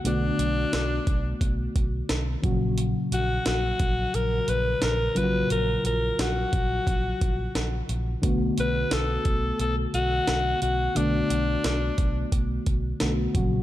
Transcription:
<<
  \new Staff \with { instrumentName = "Alto saxophone" } { \time 4/4 \key b \minor \tempo 4 = 88 d'2 r2 | r8 fis'8 fis'4 ais'8 b'8 ais'8 b'8 | ais'8 ais'8 fis'2~ fis'8 r8 | r8 b'8 a'4 a'8 fis'4 fis'8 |
d'2 r2 | }
  \new Staff \with { instrumentName = "FM electric piano" } { \time 4/4 \key b \minor <d a b fis'>2.~ <d a b fis'>8 <ais, cis fis fis'>8~ | <ais, cis fis fis'>2.~ <ais, cis fis fis'>8 <ais, cis fis eis' fis'>8~ | <ais, cis fis eis' fis'>2.~ <ais, cis fis eis' fis'>8 r8 | <d a b fis'>1 |
<d a b fis'>2. <d a b fis'>8 <ais, cis fis fis'>8 | }
  \new Staff \with { instrumentName = "Fingered electric bass" } { \clef bass \time 4/4 \key b \minor b,,8 b,,8 b,,8 b,,8 b,,8 b,,8 b,,8 ais,,8~ | ais,,8 ais,,8 ais,,8 ais,,8 ais,,8 ais,,8 ais,,8 ais,,8 | ais,,8 ais,,8 ais,,8 ais,,8 ais,,8 ais,,8 ais,,8 ais,,8 | b,,8 b,,8 b,,8 b,,8 b,,8 b,,8 b,,8 b,,8 |
b,,8 b,,8 b,,8 b,,8 b,,8 b,,8 b,,8 ais,,8 | }
  \new DrumStaff \with { instrumentName = "Drums" } \drummode { \time 4/4 hh8 hh8 <hh sn>8 <hh bd>8 <hh bd>8 <hh bd>8 <hh sn>8 <hh bd>8 | hh8 hh8 <hh sn>8 <hh bd>8 hh8 hh8 <hh sn>8 hh8 | hh8 hh8 <hh sn>8 <hh bd>8 <hh bd>8 <hh bd>8 <hh sn>8 hh8 | <hh bd>8 hh8 <hh sn>8 <hh bd>8 hh8 hh8 <hh sn>8 hh8 |
hh8 hh8 <hh sn>8 <hh bd>8 <hh bd>8 <hh bd>8 <hh sn>8 <hh bd>8 | }
>>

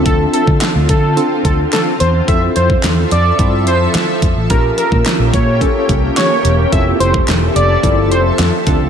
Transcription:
<<
  \new Staff \with { instrumentName = "Analog synth lead" } { \time 4/4 \key f \major \tempo 4 = 108 a'8 a'8 r8 a'8. r16 a'16 r16 a'16 r16 c''16 r16 | e''8 c''8 r8 d''8. r16 c''16 r4 r16 | bes'8 bes'8 r8 des''4 r8 des''8. r16 | e''8 c''8 r8 d''8. r16 c''16 r4 r16 | }
  \new Staff \with { instrumentName = "Synth keys" } { \time 4/4 \key f \major <c' d' f' a'>4 r4 <c' d' f' a'>4. r8 | <c' e' f' a'>4. r8 <c' e' f' a'>4. r8 | <des' f' g' bes'>4. r8 <des' f' g' a'>4. r8 | <c' e' f' a'>4. r8 <c' e' f' a'>4. <c' d' f' a'>8 | }
  \new Staff \with { instrumentName = "Ambient pad" } { \time 4/4 \key f \major <d c' f'>1 | <f a' e''>1 | <bes des' g'>1 | <f a' e''>2.~ <f a' e''>8 <d c' f'>8 | }
  \new Staff \with { instrumentName = "Fingered electric bass" } { \clef bass \time 4/4 \key f \major d,8 r16 d16 r16 d,16 d8. r16 d,8 r8 e,8 | f,8 f,8 e,8 f,8 g,8 f,8 f16 r16 f,16 a,,16 | bes,,8 r16 bes,16 r16 bes,,16 bes,8. r16 c,8 r8 e,,8 | f,,8 f,,8 e,,8 f,,8 g,,8 f,,8 f,16 r16 d,16 des,16 | }
  \new DrumStaff \with { instrumentName = "Drums" } \drummode { \time 4/4 <hh bd>8 hh16 bd16 <hc hh sn>8 <hh bd>8 hh8 <hh bd>8 <hc hh sn>8 hh8 | <hh bd>8 hh16 bd16 <hc hh sn>8 hh8 <hh bd>8 hh8 <hc hh sn>8 <hh bd>8 | <hh bd>8 hh16 bd16 <hc hh sn>8 <hh bd>8 <hh bd>8 <hh bd>8 <hc hh sn>8 hh8 | <hh bd>8 hh16 bd16 <hc hh sn>8 hh8 <hh bd>8 hh8 <hc hh sn>8 <hh bd>8 | }
>>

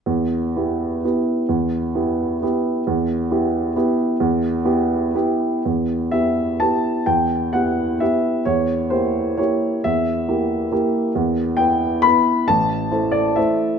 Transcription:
\new Staff \with { instrumentName = "Grand piano" } { \time 3/4 \key e \minor \tempo 4 = 130 << { r2. | r2. | r2. | r2. |
r4 e''4 a''4 | g''4 fis''4 e''4 | cis''4 c''4 cis''4 | e''2. |
r4 g''4 b''4 | a''4. d''8 e''4 | } \\ { e,4 <b e' g'>4 <b e' g'>4 | e,4 <b e' g'>4 <b e' g'>4 | e,4 <b e' g'>4 <b e' g'>4 | e,4 <b e' g'>4 <b e' g'>4 |
e,4 <b e' g'>4 <b e' g'>4 | e,4 <b e' g'>4 <b e' g'>4 | e,4 <bes e' g'>4 <bes e' g'>4 | e,4 <bes e' g'>4 <bes e' g'>4 |
e,4 <b e' b'>4 <b e' b'>4 | a,,4 <a e' c''>4 <a e' c''>4 | } >> }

